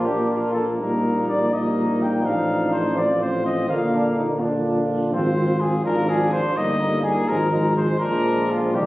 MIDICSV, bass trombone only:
0, 0, Header, 1, 2, 480
1, 0, Start_track
1, 0, Tempo, 483092
1, 779, Time_signature, 6, 3, 24, 8
1, 8804, End_track
2, 0, Start_track
2, 0, Title_t, "Bass trombone"
2, 0, Program_c, 0, 57
2, 0, Note_on_c, 0, 34, 45
2, 2183, Note_off_c, 0, 34, 0
2, 2229, Note_on_c, 0, 33, 45
2, 3661, Note_on_c, 0, 34, 51
2, 3676, Note_off_c, 0, 33, 0
2, 5090, Note_off_c, 0, 34, 0
2, 5098, Note_on_c, 0, 32, 60
2, 5720, Note_off_c, 0, 32, 0
2, 5810, Note_on_c, 0, 32, 55
2, 6353, Note_off_c, 0, 32, 0
2, 6522, Note_on_c, 0, 31, 59
2, 7148, Note_off_c, 0, 31, 0
2, 7233, Note_on_c, 0, 32, 53
2, 7865, Note_off_c, 0, 32, 0
2, 7945, Note_on_c, 0, 34, 59
2, 8685, Note_on_c, 0, 36, 50
2, 8700, Note_off_c, 0, 34, 0
2, 8804, Note_off_c, 0, 36, 0
2, 8804, End_track
0, 0, End_of_file